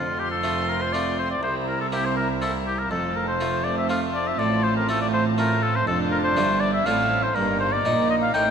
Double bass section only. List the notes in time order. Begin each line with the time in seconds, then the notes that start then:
Already playing: F1
1.43 C2
2.91 F1
4.40 A1
5.87 F1
6.37 G1
6.86 A1
7.36 G1
7.85 A#1
8.34 A1